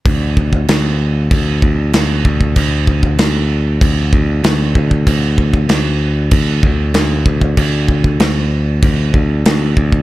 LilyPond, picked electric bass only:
\new Staff \with { instrumentName = "Picked electric bass" } { \clef bass \time 4/4 \key c \mixolydian \tempo 4 = 96 d,4 d,4 d,8 d,8 d,8 d,8 | d,4 d,4 d,8 d,8 d,8 d,8 | d,4 d,4 d,8 d,8 d,8 d,8 | d,4 d,4 d,8 d,8 d,8 d,8 | }